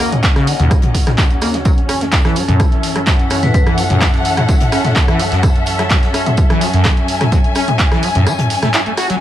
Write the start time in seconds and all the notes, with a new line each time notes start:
Already playing: D#2 C#3 C#4 F#4 A#4 D#5 F#5
0.00 A#3, cross-stick, open hi-hat, tambourine
0.12 D#3, closed hi-hat, mid tom
0.23 kick, snare, clap, closed hi-hat, tambourine
0.36 C#3, cross-stick, snare, closed hi-hat
0.47 D#3, open hi-hat, tambourine
0.59 D#2, closed hi-hat, mid tom
0.71 D#3, kick, cross-stick, closed hi-hat, tambourine
0.82 closed hi-hat, mid tom
0.94 kick, snare, open hi-hat, tambourine
1.07 D#3, cross-stick, snare, closed hi-hat, mid tom
1.18 D#3, kick, snare, clap, closed hi-hat, tambourine
1.31 closed hi-hat
1.41 A#3, cross-stick, snare, open hi-hat, tambourine
1.54 D#3, snare, closed hi-hat
1.65 F#2 E3 F#3 A4, kick, closed hi-hat, tambourine
1.78 closed hi-hat
1.89 C#4, cross-stick, open hi-hat, tambourine
1.96 A4
2.01 F#3, snare, closed hi-hat
2.12 kick, snare, clap, closed hi-hat, tambourine
2.25 E3, cross-stick, snare, closed hi-hat
2.36 F#3, open hi-hat, tambourine
2.48 F#2, closed hi-hat, mid tom
2.60 F#3 E5, kick, cross-stick, closed hi-hat, tambourine
2.72 closed hi-hat
2.83 snare, open hi-hat, tambourine
2.96 F#3, cross-stick, closed hi-hat
3.05 F#3 F#5, kick, snare, clap, closed hi-hat, tambourine
3.19 closed hi-hat
3.30 C#4, cross-stick, snare, open hi-hat, tambourine
3.43 F#3 B4, snare, closed hi-hat, mid tom
3.54 B4, kick, closed hi-hat, tambourine
3.67 E3, cross-stick, closed hi-hat
3.78 F#3, open hi-hat, tambourine
3.90 F#2, closed hi-hat, mid tom
4.01 F#3, kick, cross-stick, snare, clap, closed hi-hat, tambourine
4.14 snare, closed hi-hat
4.25 open hi-hat, tambourine
4.37 F#3, cross-stick, closed hi-hat, mid tom
4.49 F#3, kick, closed hi-hat, tambourine
4.61 closed hi-hat, mid tom
4.72 C#4, cross-stick, snare, open hi-hat, tambourine
4.84 F#3, snare, closed hi-hat, mid tom
4.96 kick, snare, clap, closed hi-hat, tambourine
5.08 E3, cross-stick, closed hi-hat
5.19 F#3, snare, open hi-hat, tambourine
5.32 F#2, snare, closed hi-hat
5.43 F#3, kick, cross-stick, closed hi-hat, tambourine
5.55 closed hi-hat
5.66 open hi-hat, tambourine
5.79 F#3, cross-stick, snare, closed hi-hat
5.90 F#3, kick, snare, clap, closed hi-hat, tambourine
6.03 snare, closed hi-hat
6.14 C#4, cross-stick, open hi-hat, tambourine
6.26 F#3, closed hi-hat, mid tom
6.37 kick, closed hi-hat, tambourine
6.48 E3 G#5, cross-stick, closed hi-hat
6.61 F#3, snare, open hi-hat, tambourine
6.74 F#2, closed hi-hat
6.85 F#3, kick, cross-stick, snare, clap, closed hi-hat, tambourine
6.97 closed hi-hat
7.08 snare, open hi-hat, tambourine
7.21 F#3, cross-stick, snare, closed hi-hat, mid tom
7.32 F#3, kick, closed hi-hat, tambourine
7.44 closed hi-hat
7.55 C#4, cross-stick, open hi-hat, tambourine
7.68 F#3, closed hi-hat, mid tom
7.79 kick, snare, clap, closed hi-hat, tambourine
7.92 E3, cross-stick, snare, closed hi-hat
8.03 F#3, open hi-hat, tambourine
8.15 F#2, closed hi-hat, mid tom
8.27 F#3, cross-stick, closed hi-hat, tambourine
8.39 closed hi-hat, mid tom
8.50 snare, open hi-hat, tambourine
8.63 A3, cross-stick, snare, closed hi-hat, mid tom
8.74 E4, snare, clap, closed hi-hat, tambourine
8.86 A3, closed hi-hat
8.97 F#4, cross-stick, snare, open hi-hat, tambourine
9.09 F#3, snare, closed hi-hat